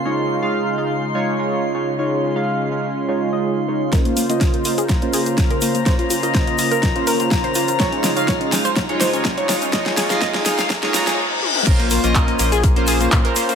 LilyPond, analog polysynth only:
\new Staff \with { instrumentName = "Analog polysynth" } { \time 4/4 \key bes \minor \tempo 4 = 124 <aes ees' f' des''>8. <aes ees' f' f''>8. <aes ees' f' f''>16 r8 <aes ees' f' des''>8 <aes ees' f' des''>8. <aes ees' f' des''>16 r16 | <aes ees' f' des''>8. <aes ees' f' f''>8. <aes ees' f' f''>16 r8 <aes ees' f' des''>8 <aes ees' f' ees''>8. <aes ees' f' des''>16 r16 | <bes des' f' c''>8. <bes des' f' ees''>8. <bes des' f' ees''>16 r8 <bes des' f' c''>8 <bes des' f' c''>8. <bes des' f' c''>16 r16 | <bes des' f' c''>8. <bes des' f' ees''>8. <bes des' f' ees''>16 r8 <bes des' f' c''>8 <bes des' f' c''>8. <bes des' f' c''>16 r16 |
<aes ees' f' des''>8. <aes ees' f' f''>8. <aes ees' f' f''>16 r8 <aes ees' f' des''>8 <aes ees' f' des''>8. <aes ees' f' des''>16 r16 | <aes ees' f' des''>8. <aes ees' f' f''>8. <aes ees' f' f''>16 r8 <aes ees' f' des''>8 <aes ees' f' des''>16 r4 | <bes des' f' c''>8. <bes des' f' ees''>8. <bes des' f' ees''>16 r8 <bes des' f' c''>8 <bes des' f' c''>8. <bes des' f' c''>16 r16 | }